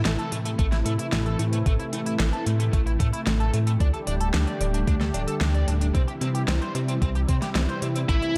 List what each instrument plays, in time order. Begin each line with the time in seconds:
Already playing: analog synth pad C3 E3 A3 E4
0.05 analog synth bass A1, overdriven electric guitar A3, snare, closed hi-hat
0.19 overdriven electric guitar A4, closed hi-hat
0.32 analog synth bass A2, overdriven electric guitar A3, closed hi-hat
0.45 overdriven electric guitar A3, closed hi-hat
0.59 analog synth bass A1, overdriven electric guitar A3, kick, closed hi-hat
0.72 overdriven electric guitar E4, snare, closed hi-hat
0.86 analog synth bass A2, overdriven electric guitar A3, closed hi-hat
0.99 overdriven electric guitar E4, closed hi-hat
1.12 analog synth bass A1, overdriven electric guitar A3, snare, closed hi-hat
1.26 overdriven electric guitar A4, closed hi-hat
1.39 analog synth bass A2, overdriven electric guitar A3, closed hi-hat
1.53 overdriven electric guitar A3, closed hi-hat
1.66 analog synth bass A1, overdriven electric guitar A3, kick, closed hi-hat
1.79 overdriven electric guitar E4, closed hi-hat
1.93 analog synth bass A2, overdriven electric guitar A3, closed hi-hat
2.06 overdriven electric guitar E4, closed hi-hat
2.20 analog synth bass A1, overdriven electric guitar A3, snare, closed hi-hat
2.33 overdriven electric guitar A4, closed hi-hat
2.46 analog synth bass A2, overdriven electric guitar A3, closed hi-hat
2.60 overdriven electric guitar A3, closed hi-hat
2.73 analog synth bass A1, overdriven electric guitar A3, kick, closed hi-hat
2.87 overdriven electric guitar E4, closed hi-hat
3.00 analog synth bass A2, overdriven electric guitar A3, kick, closed hi-hat
3.13 overdriven electric guitar E4, closed hi-hat
3.27 analog synth bass A1, overdriven electric guitar A3, snare, closed hi-hat
3.40 overdriven electric guitar A4, closed hi-hat
3.53 analog synth bass A2, overdriven electric guitar A3, closed hi-hat
3.67 overdriven electric guitar A3, closed hi-hat
3.80 analog synth bass D2, analog synth pad D3 G3 G4, overdriven electric guitar D4, kick, closed hi-hat
3.94 overdriven electric guitar A4, closed hi-hat
4.07 analog synth bass D1, overdriven electric guitar D4, closed hi-hat
4.20 overdriven electric guitar A4, closed hi-hat
4.34 analog synth bass D2, overdriven electric guitar D4, snare, closed hi-hat
4.47 overdriven electric guitar D5, closed hi-hat
4.61 analog synth bass D1, overdriven electric guitar D4, closed hi-hat
4.74 overdriven electric guitar D4, closed hi-hat
4.87 analog synth bass D2, overdriven electric guitar D4, kick, closed hi-hat
5.01 overdriven electric guitar A4, snare, closed hi-hat
5.14 analog synth bass D1, overdriven electric guitar D4, closed hi-hat
5.28 overdriven electric guitar A4, closed hi-hat
5.41 analog synth bass D2, overdriven electric guitar D4, snare, closed hi-hat
5.54 overdriven electric guitar D5, closed hi-hat
5.68 analog synth bass D1, overdriven electric guitar D4, closed hi-hat
5.81 overdriven electric guitar D4, closed hi-hat
5.95 analog synth bass C2, analog synth pad C3 E3 G3 E4, overdriven electric guitar C4, kick, closed hi-hat
6.08 overdriven electric guitar G4, closed hi-hat
6.21 analog synth bass C3, overdriven electric guitar C4, closed hi-hat
6.35 overdriven electric guitar G4, closed hi-hat
6.48 analog synth bass C2, overdriven electric guitar C4, snare, closed hi-hat
6.62 overdriven electric guitar C5, closed hi-hat
6.75 analog synth bass C3, overdriven electric guitar C4, closed hi-hat
6.88 overdriven electric guitar C4, closed hi-hat
7.02 analog synth bass C2, overdriven electric guitar C4, kick, closed hi-hat
7.15 overdriven electric guitar G4, closed hi-hat
7.28 analog synth bass C3, overdriven electric guitar C4, kick, closed hi-hat
7.42 overdriven electric guitar G4, snare, closed hi-hat
7.55 analog synth bass C2, overdriven electric guitar C4, snare, closed hi-hat
7.69 overdriven electric guitar C5, closed hi-hat
7.82 analog synth bass C3, overdriven electric guitar C4, closed hi-hat
7.96 overdriven electric guitar C4, closed hi-hat
8.09 analog synth bass A1, analog synth pad A3, overdriven electric guitar A3, lead electric guitar E4, kick, closed hi-hat
8.22 overdriven electric guitar E4, closed hi-hat